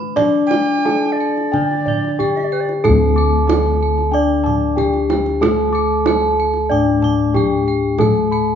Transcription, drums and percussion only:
0.17 kendang low medium
0.51 kendang high medium
0.85 kendang high medium
1.03 kendang slap soft
1.37 kendang slap soft
1.53 kendang low medium
1.71 kendang slap soft
1.87 kendang low medium
2.04 kendang slap soft
2.20 kendang low medium
2.37 kendang slap soft
2.69 kendang slap soft
2.85 kendang high medium
2.85 kendang low medium
3.50 kendang high medium
3.98 kendang slap soft
4.46 kendang low medium
4.78 kendang low medium
4.94 kendang slap soft
5.10 kendang high medium
5.26 kendang slap soft
5.43 kendang high medium
5.43 kendang low medium
6.06 kendang high medium
6.21 kendang slap soft
6.54 kendang slap soft
6.86 kendang slap soft
7.02 kendang low medium
7.35 kendang low medium
7.98 kendang high medium
7.98 kendang low medium

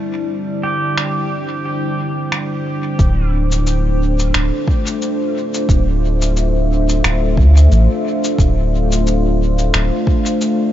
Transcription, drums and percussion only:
0.98 finger snap medium
2.32 finger snap medium
2.99 kick loud
2.99 cabasa soft
3.52 cabasa medium
3.67 cabasa soft
4.19 cabasa medium
4.34 finger snap medium
4.34 cabasa soft
4.68 kick loud
4.87 cabasa medium
5.02 cabasa soft
5.54 cabasa medium
5.69 kick loud
5.69 cabasa soft
6.22 cabasa medium
6.37 cabasa soft
6.89 cabasa medium
7.04 finger snap loud
7.04 cabasa soft
7.37 kick loud
7.57 cabasa medium
7.72 cabasa soft
8.24 cabasa medium
8.39 kick loud
8.39 cabasa soft
8.92 cabasa medium
9.07 cabasa soft
9.59 cabasa medium
9.74 finger snap loud
9.74 cabasa soft
10.07 kick loud
10.26 cabasa medium
10.41 cabasa soft

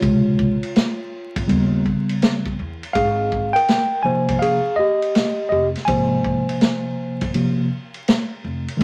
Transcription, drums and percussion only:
0.02 kick loud
0.02 ride medium
0.39 kick medium
0.63 ride medium
0.76 snare loud
0.76 hi-hat pedal soft
0.76 ride medium
1.36 kick medium
1.36 ride medium
1.49 ride medium
1.86 kick medium
2.09 ride medium
2.22 snare loud
2.22 hi-hat pedal soft
2.22 ride medium
2.46 kick medium
2.83 ride medium
2.95 kick loud
2.95 ride medium
3.32 kick medium
3.56 ride medium
3.68 snare loud
3.68 hi-hat pedal soft
3.68 ride medium
4.28 kick medium
4.28 ride medium
4.42 ride medium
5.02 ride medium
5.15 snare loud
5.15 hi-hat pedal soft
5.15 ride medium
5.75 snare soft
5.75 ride medium
5.88 kick loud
5.88 ride medium
6.25 kick medium
6.49 ride medium
6.61 snare loud
6.61 hi-hat pedal soft
6.61 ride medium
7.21 kick medium
7.21 ride medium
7.34 ride medium
7.94 ride soft
8.08 snare loud
8.08 hi-hat pedal soft
8.08 ride medium
8.68 ride medium
8.80 ride medium

